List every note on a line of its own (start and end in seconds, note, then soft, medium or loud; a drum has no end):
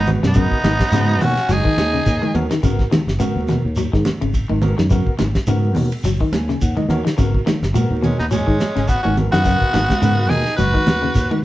0.00 0.16 G#1 medium
0.00 0.11 D#4 medium
0.06 0.18 B3 medium
0.06 0.18 F#4 medium
0.06 0.19 B4 medium
0.06 ride bell medium
0.06 high conga medium
0.06 low conga medium
0.06 shekere soft
0.23 0.45 F#2 loud
0.23 0.30 B2 medium
0.23 1.25 B3 medium
0.23 snare medium
0.27 1.24 D#4 loud
0.34 0.52 C#3 medium
0.34 0.56 B3 medium
0.34 0.57 F#4 medium
0.34 0.57 A#4 medium
0.34 kick medium
0.34 ride bell soft
0.34 shekere medium
0.51 kick medium
0.63 0.76 G#1 medium
0.63 0.80 D#3 medium
0.63 snare medium
0.63 ride bell medium
0.63 high conga loud
0.63 shekere soft
0.80 kick medium
0.80 snare medium
0.80 ride bell medium
0.92 1.21 G#2 medium
0.92 1.09 C#3 medium
0.92 1.34 B3 loud
0.92 1.35 F#4 medium
0.92 1.35 B4 loud
0.92 snare soft
0.92 ride bell medium
0.92 high conga medium
0.92 shekere loud
1.21 1.33 D#2 medium
1.21 1.37 B2 medium
1.21 1.54 C#4 medium
1.21 1.53 F#4 loud
1.21 snare soft
1.21 open hi-hat medium
1.21 low conga medium
1.21 shekere soft
1.37 snare soft
1.37 ride bell medium
1.49 1.61 F#1 loud
1.49 1.58 F#3 medium
1.49 2.36 G#4 loud
1.49 ride bell medium
1.49 high conga medium
1.49 shekere medium
1.53 2.37 D#4 loud
1.64 1.81 D#3 medium
1.64 kick medium
1.77 1.99 D#2 loud
1.77 snare medium
1.77 ride bell medium
1.77 high conga medium
1.77 shekere soft
1.93 2.09 C#3 medium
2.06 2.18 D#2 loud
2.06 kick medium
2.06 ride bell medium
2.06 shekere medium
2.22 2.38 D#3 medium
2.22 high conga medium
2.34 2.47 D#2 loud
2.34 2.46 B3 loud
2.34 2.46 F#4 medium
2.34 2.46 A#4 loud
2.34 ride bell medium
2.34 low conga medium
2.34 shekere soft
2.51 2.58 D#3 medium
2.51 snare medium
2.51 ride bell medium
2.63 2.85 G#1 loud
2.63 2.79 C#3 medium
2.63 2.84 B3 medium
2.63 2.85 F#4 medium
2.63 2.85 A#4 loud
2.63 kick medium
2.63 ride bell medium
2.63 shekere medium
2.79 kick medium
2.79 snare soft
2.91 3.07 D#3 medium
2.91 snare medium
2.91 ride bell medium
2.91 high conga loud
2.91 low conga medium
2.91 shekere soft
3.07 3.17 F#1 medium
3.07 snare medium
3.19 3.36 C#3 medium
3.19 3.61 B3 medium
3.19 3.62 F#4 medium
3.19 3.62 A#4 medium
3.19 ride bell medium
3.19 high conga medium
3.19 shekere medium
3.36 3.57 D#2 medium
3.48 3.65 B2 medium
3.48 snare soft
3.48 ride bell soft
3.48 low conga medium
3.48 shekere soft
3.65 3.86 D#2 medium
3.76 3.86 F#3 medium
3.76 ride bell medium
3.76 shekere medium
3.93 4.03 G#2 medium
3.93 4.09 D#3 medium
3.93 kick medium
3.93 snare soft
4.05 muted fingered electric bass stroke soft
4.05 snare medium
4.05 ride bell medium
4.05 high conga medium
4.05 low conga medium
4.05 shekere soft
4.21 4.43 G#1 loud
4.21 4.37 C#3 medium
4.21 ride bell medium
4.34 kick medium
4.34 ride bell medium
4.34 shekere medium
4.49 4.72 G#1 medium
4.49 4.66 D#3 medium
4.49 high conga medium
4.61 4.73 B3 loud
4.61 4.73 F#4 medium
4.61 4.74 A#4 loud
4.61 ride bell medium
4.61 high conga medium
4.61 low conga medium
4.61 shekere soft
4.78 5.00 F#2 loud
4.78 4.85 D#3 medium
4.78 snare medium
4.90 5.07 C#3 medium
4.90 5.12 B3 medium
4.90 5.12 F#4 medium
4.90 5.13 A#4 medium
4.90 kick medium
4.90 ride bell medium
4.90 shekere medium
5.07 kick medium
5.19 5.32 G#1 medium
5.19 5.35 D#3 medium
5.19 snare medium
5.19 ride bell medium
5.19 high conga loud
5.19 shekere soft
5.35 kick medium
5.35 snare medium
5.35 ride bell medium
5.47 5.76 G#2 medium
5.47 5.64 C#3 medium
5.47 5.89 B3 medium
5.47 5.90 F#4 medium
5.47 5.90 A#4 medium
5.47 ride bell medium
5.47 high conga medium
5.47 shekere loud
5.75 5.88 D#2 medium
5.75 5.92 B2 medium
5.75 open hi-hat medium
5.75 low conga medium
5.75 shekere soft
5.92 ride bell medium
6.04 6.16 F#1 loud
6.04 6.14 F#3 medium
6.04 ride bell medium
6.04 shekere medium
6.20 6.37 D#3 medium
6.20 kick medium
6.32 6.54 D#2 medium
6.32 6.60 G#5 medium
6.32 snare medium
6.32 ride bell medium
6.32 high conga medium
6.32 shekere soft
6.49 6.65 C#3 medium
6.49 snare soft
6.61 6.74 D#2 loud
6.61 6.77 F#5 medium
6.61 kick medium
6.61 ride bell medium
6.61 shekere medium
6.77 6.93 D#3 medium
6.77 6.89 D#5 medium
6.77 high conga medium
6.88 7.01 D#2 loud
6.88 7.00 B3 medium
6.88 7.01 F#4 medium
6.88 7.01 A#4 loud
6.88 7.16 C#5 medium
6.88 ride bell medium
6.88 low conga medium
6.88 shekere soft
7.05 7.12 D#3 medium
7.05 snare medium
7.05 ride bell medium
7.17 7.40 G#1 loud
7.17 7.34 C#3 medium
7.17 7.39 B3 medium
7.17 7.39 F#4 medium
7.17 7.40 A#4 medium
7.17 kick medium
7.17 ride bell medium
7.17 shekere medium
7.34 kick medium
7.46 7.62 D#3 medium
7.46 snare medium
7.46 ride bell medium
7.46 high conga loud
7.46 shekere soft
7.62 7.72 F#1 medium
7.62 snare medium
7.74 7.90 A#2 medium
7.74 8.16 B3 medium
7.74 8.17 F#4 medium
7.74 8.17 A#4 medium
7.74 ride bell medium
7.74 high conga medium
7.74 shekere loud
7.90 8.12 D#2 medium
8.02 8.19 B2 medium
8.02 8.19 G#3 medium
8.02 8.18 C#4 medium
8.02 ride bell medium
8.02 low conga medium
8.02 shekere soft
8.19 8.41 D#2 medium
8.19 8.26 B3 medium
8.19 8.25 D#4 medium
8.19 snare soft
8.31 8.40 F#3 medium
8.31 8.89 G#3 medium
8.31 8.91 C#4 medium
8.31 ride bell medium
8.31 high conga medium
8.31 shekere loud
8.47 8.57 G#2 medium
8.47 8.63 D#3 medium
8.47 kick medium
8.59 muted fingered electric bass stroke soft
8.59 snare medium
8.59 ride bell medium
8.59 high conga loud
8.59 shekere soft
8.76 8.98 G#1 medium
8.76 8.92 C#3 medium
8.76 snare soft
8.76 ride bell medium
8.88 9.02 B3 medium
8.88 9.02 F#4 loud
8.88 kick medium
8.88 ride bell medium
8.88 shekere medium
9.03 9.27 G#1 medium
9.03 9.21 D#3 medium
9.03 9.16 C#4 medium
9.03 9.16 F#4 medium
9.03 high conga medium
9.17 9.28 B3 medium
9.17 9.28 F#4 medium
9.17 9.29 A#4 medium
9.17 ride bell medium
9.17 low conga medium
9.17 shekere soft
9.31 9.55 F#2 loud
9.31 9.40 D#3 medium
9.31 10.30 B3 medium
9.31 10.31 F#4 loud
9.31 snare medium
9.44 9.61 C#3 medium
9.44 9.66 B3 medium
9.44 9.67 F#4 medium
9.44 9.67 A#4 medium
9.44 kick loud
9.44 ride bell medium
9.44 shekere medium
9.62 kick medium
9.73 9.86 G#1 medium
9.73 9.89 D#3 medium
9.73 snare medium
9.73 ride bell medium
9.73 high conga loud
9.73 shekere soft
9.90 kick medium
9.90 snare medium
9.90 ride bell medium
9.90 high conga medium
10.02 10.30 G#2 medium
10.02 10.18 C#3 medium
10.02 10.44 B3 medium
10.02 10.44 F#4 medium
10.02 10.44 A#4 loud
10.02 ride bell medium
10.02 high conga medium
10.02 shekere loud
10.29 10.42 D#2 medium
10.29 10.46 B2 medium
10.29 10.58 D#4 medium
10.29 10.56 G#4 loud
10.29 open hi-hat medium
10.29 low conga medium
10.29 shekere soft
10.47 snare soft
10.47 ride bell medium
10.57 10.71 F#1 loud
10.57 10.67 F#3 medium
10.57 11.40 F#4 loud
10.57 11.39 B4 loud
10.57 ride bell medium
10.57 high conga medium
10.57 shekere medium
10.74 10.90 D#3 medium
10.74 kick medium
10.86 11.08 D#2 medium
10.86 snare medium
10.86 ride bell medium
10.86 high conga medium
10.86 low conga medium
10.86 shekere soft
11.02 11.18 C#3 medium
11.15 11.28 D#2 loud
11.15 kick medium
11.15 snare soft
11.15 ride bell medium
11.15 shekere loud
11.31 11.45 D#3 medium
11.31 high conga medium